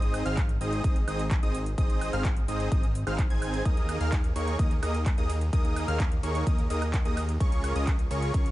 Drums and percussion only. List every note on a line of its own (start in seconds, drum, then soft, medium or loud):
0.02 closed hi-hat soft
0.14 open hi-hat loud
0.14 high woodblock medium
0.14 shaker medium
0.26 closed hi-hat soft
0.26 shaker soft
0.37 kick loud
0.37 clap loud
0.37 closed hi-hat medium
0.37 shaker soft
0.49 closed hi-hat soft
0.49 shaker soft
0.61 open hi-hat loud
0.61 shaker medium
0.73 closed hi-hat soft
0.73 shaker soft
0.84 kick loud
0.84 closed hi-hat medium
0.84 shaker soft
0.96 closed hi-hat soft
1.08 open hi-hat loud
1.08 high woodblock medium
1.08 shaker medium
1.19 closed hi-hat soft
1.19 shaker soft
1.31 kick loud
1.31 clap loud
1.31 closed hi-hat medium
1.31 shaker soft
1.43 closed hi-hat soft
1.55 open hi-hat loud
1.55 shaker medium
1.66 closed hi-hat soft
1.66 shaker soft
1.78 kick loud
1.78 closed hi-hat medium
1.78 shaker soft
1.90 closed hi-hat soft
1.90 shaker soft
2.01 open hi-hat loud
2.01 high woodblock medium
2.01 shaker medium
2.13 closed hi-hat soft
2.13 shaker soft
2.25 kick loud
2.25 clap loud
2.25 closed hi-hat medium
2.25 shaker soft
2.37 closed hi-hat soft
2.37 shaker soft
2.48 open hi-hat loud
2.48 shaker medium
2.60 closed hi-hat soft
2.60 shaker soft
2.72 kick loud
2.72 closed hi-hat medium
2.72 shaker soft
2.83 closed hi-hat soft
2.95 open hi-hat loud
2.95 shaker medium
3.07 closed hi-hat soft
3.07 high woodblock medium
3.07 shaker soft
3.19 kick loud
3.19 clap loud
3.19 closed hi-hat medium
3.19 shaker soft
3.30 closed hi-hat soft
3.42 open hi-hat loud
3.42 high woodblock medium
3.42 shaker medium
3.54 closed hi-hat soft
3.54 shaker soft
3.65 kick loud
3.65 closed hi-hat medium
3.65 ride medium
3.65 shaker soft
3.77 closed hi-hat soft
3.89 open hi-hat loud
3.89 ride medium
3.89 high woodblock medium
3.89 shaker medium
4.01 closed hi-hat soft
4.01 shaker soft
4.12 kick loud
4.12 clap loud
4.12 closed hi-hat medium
4.12 ride medium
4.12 shaker soft
4.24 closed hi-hat soft
4.24 shaker soft
4.36 open hi-hat loud
4.36 ride medium
4.36 shaker medium
4.48 closed hi-hat soft
4.48 shaker soft
4.59 kick loud
4.59 closed hi-hat medium
4.59 ride medium
4.59 shaker soft
4.71 closed hi-hat soft
4.83 open hi-hat loud
4.83 ride medium
4.83 high woodblock medium
4.83 shaker medium
4.94 closed hi-hat soft
4.94 shaker soft
5.06 kick loud
5.06 clap loud
5.06 closed hi-hat medium
5.06 ride medium
5.06 shaker soft
5.18 closed hi-hat soft
5.30 open hi-hat loud
5.30 ride medium
5.30 shaker medium
5.41 closed hi-hat soft
5.41 shaker soft
5.53 kick loud
5.53 closed hi-hat medium
5.53 ride medium
5.53 shaker soft
5.65 closed hi-hat soft
5.76 open hi-hat loud
5.76 ride medium
5.76 high woodblock medium
5.76 shaker medium
5.88 closed hi-hat soft
5.88 shaker soft
6.00 kick loud
6.00 clap loud
6.00 closed hi-hat medium
6.00 ride medium
6.00 shaker soft
6.12 closed hi-hat soft
6.12 shaker soft
6.23 open hi-hat loud
6.23 ride medium
6.23 shaker medium
6.35 closed hi-hat soft
6.35 shaker soft
6.47 kick loud
6.47 closed hi-hat medium
6.47 ride medium
6.47 shaker soft
6.58 closed hi-hat soft
6.70 open hi-hat loud
6.70 ride medium
6.70 shaker medium
6.82 closed hi-hat soft
6.82 high woodblock medium
6.82 shaker soft
6.94 kick loud
6.94 clap loud
6.94 closed hi-hat medium
6.94 ride medium
6.94 shaker soft
7.05 closed hi-hat soft
7.17 open hi-hat loud
7.17 ride medium
7.17 high woodblock medium
7.17 shaker medium
7.29 closed hi-hat soft
7.29 shaker soft
7.40 kick loud
7.40 closed hi-hat medium
7.40 ride medium
7.40 shaker soft
7.52 closed hi-hat soft
7.64 open hi-hat loud
7.64 ride medium
7.64 high woodblock medium
7.64 shaker medium
7.76 closed hi-hat soft
7.76 shaker soft
7.87 kick loud
7.87 clap loud
7.87 closed hi-hat medium
7.87 ride medium
7.87 shaker soft
7.99 closed hi-hat soft
7.99 shaker soft
8.11 open hi-hat loud
8.11 ride medium
8.11 shaker medium
8.22 closed hi-hat soft
8.22 shaker soft
8.34 kick loud
8.34 closed hi-hat medium
8.34 ride medium
8.34 shaker soft
8.46 closed hi-hat soft